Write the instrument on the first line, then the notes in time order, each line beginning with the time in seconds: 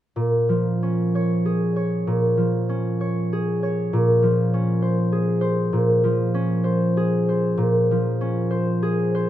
harp
0.16 A#2
0.49 F3
0.83 C#4
1.15 C#5
1.45 G#4
1.76 C#5
2.07 A#2
2.37 F3
2.69 C#4
3.01 C#5
3.33 G#4
3.63 C#5
3.93 A#2
4.22 F3
4.54 C#4
4.82 C5
5.12 G#4
5.41 C5
5.73 A#2
6.04 F3
6.34 C#4
6.64 C5
6.97 G#4
7.29 C5
7.57 A#2
7.91 F3
8.21 C#4
8.51 C5
8.82 G#4
9.15 C5